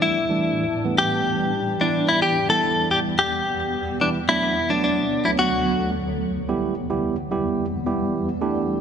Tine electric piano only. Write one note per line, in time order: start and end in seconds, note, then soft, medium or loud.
0.00 0.16 E3 medium
0.00 0.16 G3 medium
0.00 0.16 A3 medium
0.00 0.16 D4 medium
0.29 0.63 E3 medium
0.29 0.63 G3 medium
0.29 0.63 A3 medium
0.29 0.63 D4 medium
0.84 1.51 E3 medium
0.84 1.51 G3 medium
0.84 1.51 A3 medium
0.84 1.51 B3 medium
1.81 2.36 E3 medium
1.81 2.36 G3 medium
1.81 2.36 B3 medium
1.81 2.36 E4 medium
2.49 3.16 E3 medium
2.49 3.16 G3 medium
2.49 3.16 B3 medium
2.49 3.16 E4 medium
4.01 4.18 E3 medium
4.01 4.18 G3 medium
4.01 4.18 B3 medium
4.01 4.18 E4 medium
4.28 4.53 F#3 medium
4.28 4.54 A3 medium
4.28 4.54 B3 medium
4.28 4.54 D4 medium
4.70 5.03 F#3 medium
4.70 5.03 A3 medium
4.70 5.03 B3 medium
4.70 5.03 D4 medium
5.25 5.91 F#3 medium
5.25 5.91 A3 medium
5.25 5.91 B3 medium
5.25 5.91 D4 medium
6.49 6.74 G3 medium
6.49 6.74 B3 medium
6.49 6.74 E4 medium
6.49 6.74 G4 medium
6.90 7.15 G3 medium
6.90 7.15 B3 medium
6.90 7.15 E4 medium
6.90 7.15 G4 medium
7.31 7.64 G3 medium
7.31 7.65 B3 medium
7.31 7.65 E4 medium
7.31 7.65 G4 medium
7.86 8.28 G3 medium
7.86 8.28 B3 medium
7.86 8.28 E4 medium
7.86 8.28 G4 medium
8.41 8.81 A3 medium
8.41 8.81 D4 medium
8.41 8.81 E4 medium
8.41 8.81 G4 loud